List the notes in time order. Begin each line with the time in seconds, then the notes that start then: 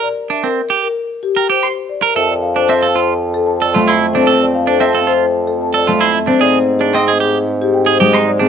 0.03 D5
0.30 D4 E5
0.44 C4 A#4
0.70 G4
0.83 A#4
1.23 G4
1.36 A#4 G5
1.50 G4 C5
1.63 C6
1.89 D5
2.02 A#4
2.15 F2 A4 E5
2.28 D5
2.42 F5
2.55 D4 C5
2.68 C4 E5 A5
2.82 A4 F5
2.94 F4 C5
3.34 A4
3.47 A5
3.61 A4 D5
3.74 A3 F4
3.87 E4 C6
4.00 E5
4.14 C4 D4 C5
4.27 A4 E5
4.41 D5
4.54 F5
4.67 D4 C5
4.80 C4 E5 A5
4.94 A4 F5
5.07 F4 C5
5.47 A4
5.61 A5
5.74 A4 D5
5.87 A3 F4
6.00 E4 C6
6.15 E5
6.27 C4 D4 C5
6.40 G#2 G#4 D5
6.53 C5
6.66 D#5
6.79 D4 G#4
6.93 C4 D#5 G5
7.07 G#4 D#5
7.20 G4 G#4
7.62 G4
7.74 G5
7.86 G#4 C5
8.00 G#3 G4
8.13 D#4 C6
8.27 D5
8.39 C4 D4 G#4